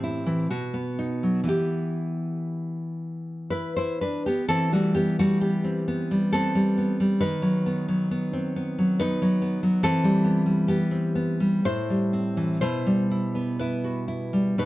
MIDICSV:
0, 0, Header, 1, 2, 480
1, 0, Start_track
1, 0, Key_signature, 1, "minor"
1, 0, Tempo, 936037
1, 256, Tempo, 995025
1, 733, Time_signature, 3, 2, 24, 8
1, 2176, Tempo, 914634
1, 3136, Tempo, 894188
1, 4576, Tempo, 843882
1, 5536, Tempo, 960000
1, 6496, Tempo, 986842
1, 7495, End_track
2, 0, Start_track
2, 0, Title_t, "Nylon-string guitar"
2, 0, Program_c, 0, 24
2, 0, Note_on_c, 0, 45, 47
2, 0, Note_on_c, 0, 60, 41
2, 0, Note_on_c, 0, 67, 60
2, 18, Note_on_c, 0, 64, 45
2, 135, Note_on_c, 0, 52, 38
2, 233, Note_off_c, 0, 67, 0
2, 240, Note_off_c, 0, 45, 0
2, 256, Note_off_c, 0, 60, 0
2, 257, Note_off_c, 0, 52, 0
2, 257, Note_off_c, 0, 64, 0
2, 258, Note_on_c, 0, 66, 64
2, 261, Note_on_c, 0, 47, 47
2, 371, Note_on_c, 0, 59, 37
2, 491, Note_on_c, 0, 63, 41
2, 609, Note_on_c, 0, 54, 39
2, 705, Note_off_c, 0, 54, 0
2, 707, Note_on_c, 0, 52, 47
2, 709, Note_off_c, 0, 59, 0
2, 715, Note_off_c, 0, 66, 0
2, 715, Note_on_c, 0, 59, 36
2, 721, Note_off_c, 0, 47, 0
2, 725, Note_on_c, 0, 64, 35
2, 731, Note_on_c, 0, 67, 59
2, 733, Note_off_c, 0, 63, 0
2, 1703, Note_off_c, 0, 64, 0
2, 1705, Note_on_c, 0, 71, 65
2, 1711, Note_on_c, 0, 64, 50
2, 1819, Note_off_c, 0, 64, 0
2, 1824, Note_off_c, 0, 71, 0
2, 1831, Note_on_c, 0, 72, 59
2, 1837, Note_on_c, 0, 64, 50
2, 1924, Note_off_c, 0, 67, 0
2, 1944, Note_off_c, 0, 64, 0
2, 1949, Note_off_c, 0, 72, 0
2, 1951, Note_on_c, 0, 71, 57
2, 1956, Note_on_c, 0, 62, 50
2, 2062, Note_off_c, 0, 62, 0
2, 2067, Note_off_c, 0, 71, 0
2, 2071, Note_on_c, 0, 67, 56
2, 2072, Note_off_c, 0, 59, 0
2, 2077, Note_on_c, 0, 59, 43
2, 2145, Note_off_c, 0, 52, 0
2, 2176, Note_off_c, 0, 59, 0
2, 2177, Note_off_c, 0, 67, 0
2, 2179, Note_on_c, 0, 69, 86
2, 2182, Note_on_c, 0, 52, 58
2, 2185, Note_on_c, 0, 60, 61
2, 2293, Note_off_c, 0, 60, 0
2, 2297, Note_off_c, 0, 69, 0
2, 2304, Note_on_c, 0, 55, 42
2, 2307, Note_on_c, 0, 66, 66
2, 2316, Note_on_c, 0, 57, 47
2, 2418, Note_off_c, 0, 57, 0
2, 2421, Note_on_c, 0, 67, 76
2, 2422, Note_off_c, 0, 66, 0
2, 2427, Note_on_c, 0, 59, 49
2, 2533, Note_off_c, 0, 59, 0
2, 2539, Note_off_c, 0, 67, 0
2, 2544, Note_off_c, 0, 55, 0
2, 2550, Note_on_c, 0, 55, 42
2, 2550, Note_on_c, 0, 66, 66
2, 2555, Note_on_c, 0, 57, 46
2, 2658, Note_off_c, 0, 57, 0
2, 2664, Note_off_c, 0, 66, 0
2, 2666, Note_on_c, 0, 67, 62
2, 2675, Note_on_c, 0, 59, 46
2, 2786, Note_on_c, 0, 60, 42
2, 2903, Note_off_c, 0, 59, 0
2, 2910, Note_on_c, 0, 59, 48
2, 3026, Note_off_c, 0, 55, 0
2, 3032, Note_on_c, 0, 55, 38
2, 3123, Note_off_c, 0, 67, 0
2, 3141, Note_off_c, 0, 59, 0
2, 3145, Note_on_c, 0, 69, 70
2, 3146, Note_off_c, 0, 60, 0
2, 3147, Note_on_c, 0, 59, 44
2, 3152, Note_on_c, 0, 60, 60
2, 3259, Note_off_c, 0, 55, 0
2, 3266, Note_on_c, 0, 55, 39
2, 3381, Note_off_c, 0, 59, 0
2, 3387, Note_on_c, 0, 59, 47
2, 3501, Note_off_c, 0, 55, 0
2, 3507, Note_on_c, 0, 55, 44
2, 3597, Note_off_c, 0, 52, 0
2, 3601, Note_off_c, 0, 69, 0
2, 3602, Note_off_c, 0, 60, 0
2, 3617, Note_on_c, 0, 51, 54
2, 3617, Note_on_c, 0, 71, 88
2, 3621, Note_off_c, 0, 55, 0
2, 3621, Note_off_c, 0, 59, 0
2, 3623, Note_on_c, 0, 63, 66
2, 3733, Note_on_c, 0, 54, 49
2, 3862, Note_on_c, 0, 59, 49
2, 3975, Note_off_c, 0, 54, 0
2, 3982, Note_on_c, 0, 54, 44
2, 4097, Note_off_c, 0, 59, 0
2, 4104, Note_on_c, 0, 59, 46
2, 4220, Note_off_c, 0, 63, 0
2, 4222, Note_on_c, 0, 60, 42
2, 4339, Note_off_c, 0, 59, 0
2, 4345, Note_on_c, 0, 59, 54
2, 4458, Note_off_c, 0, 54, 0
2, 4465, Note_on_c, 0, 54, 47
2, 4556, Note_off_c, 0, 71, 0
2, 4574, Note_off_c, 0, 59, 0
2, 4578, Note_on_c, 0, 71, 90
2, 4580, Note_on_c, 0, 59, 54
2, 4582, Note_off_c, 0, 60, 0
2, 4584, Note_on_c, 0, 63, 68
2, 4698, Note_off_c, 0, 54, 0
2, 4705, Note_on_c, 0, 54, 49
2, 4811, Note_off_c, 0, 59, 0
2, 4818, Note_on_c, 0, 59, 52
2, 4932, Note_off_c, 0, 54, 0
2, 4939, Note_on_c, 0, 54, 48
2, 5034, Note_off_c, 0, 51, 0
2, 5037, Note_off_c, 0, 63, 0
2, 5037, Note_off_c, 0, 71, 0
2, 5053, Note_on_c, 0, 52, 68
2, 5055, Note_off_c, 0, 59, 0
2, 5056, Note_off_c, 0, 54, 0
2, 5056, Note_on_c, 0, 69, 87
2, 5062, Note_on_c, 0, 60, 77
2, 5172, Note_on_c, 0, 55, 56
2, 5289, Note_on_c, 0, 59, 55
2, 5404, Note_off_c, 0, 55, 0
2, 5411, Note_on_c, 0, 55, 44
2, 5517, Note_off_c, 0, 60, 0
2, 5517, Note_off_c, 0, 69, 0
2, 5535, Note_off_c, 0, 59, 0
2, 5537, Note_on_c, 0, 67, 72
2, 5541, Note_on_c, 0, 59, 58
2, 5652, Note_on_c, 0, 60, 45
2, 5767, Note_off_c, 0, 59, 0
2, 5773, Note_on_c, 0, 59, 51
2, 5891, Note_off_c, 0, 55, 0
2, 5897, Note_on_c, 0, 55, 49
2, 5995, Note_off_c, 0, 52, 0
2, 5997, Note_off_c, 0, 67, 0
2, 6017, Note_off_c, 0, 55, 0
2, 6017, Note_off_c, 0, 59, 0
2, 6017, Note_off_c, 0, 60, 0
2, 6022, Note_on_c, 0, 45, 60
2, 6023, Note_on_c, 0, 72, 79
2, 6027, Note_on_c, 0, 64, 69
2, 6147, Note_on_c, 0, 55, 41
2, 6262, Note_on_c, 0, 60, 48
2, 6381, Note_on_c, 0, 52, 40
2, 6480, Note_off_c, 0, 72, 0
2, 6481, Note_off_c, 0, 64, 0
2, 6485, Note_off_c, 0, 45, 0
2, 6500, Note_off_c, 0, 52, 0
2, 6500, Note_off_c, 0, 60, 0
2, 6501, Note_on_c, 0, 72, 88
2, 6502, Note_off_c, 0, 55, 0
2, 6504, Note_on_c, 0, 47, 61
2, 6509, Note_on_c, 0, 64, 70
2, 6625, Note_on_c, 0, 55, 39
2, 6740, Note_off_c, 0, 64, 0
2, 6746, Note_on_c, 0, 64, 47
2, 6861, Note_on_c, 0, 59, 36
2, 6960, Note_off_c, 0, 72, 0
2, 6980, Note_off_c, 0, 64, 0
2, 6980, Note_on_c, 0, 71, 57
2, 6986, Note_on_c, 0, 64, 45
2, 7100, Note_on_c, 0, 66, 35
2, 7210, Note_off_c, 0, 64, 0
2, 7216, Note_on_c, 0, 64, 45
2, 7333, Note_off_c, 0, 55, 0
2, 7338, Note_on_c, 0, 55, 39
2, 7439, Note_off_c, 0, 71, 0
2, 7440, Note_off_c, 0, 47, 0
2, 7456, Note_off_c, 0, 64, 0
2, 7457, Note_off_c, 0, 55, 0
2, 7458, Note_off_c, 0, 59, 0
2, 7458, Note_off_c, 0, 66, 0
2, 7460, Note_on_c, 0, 47, 49
2, 7464, Note_on_c, 0, 63, 50
2, 7464, Note_on_c, 0, 71, 74
2, 7495, Note_off_c, 0, 47, 0
2, 7495, Note_off_c, 0, 63, 0
2, 7495, Note_off_c, 0, 71, 0
2, 7495, End_track
0, 0, End_of_file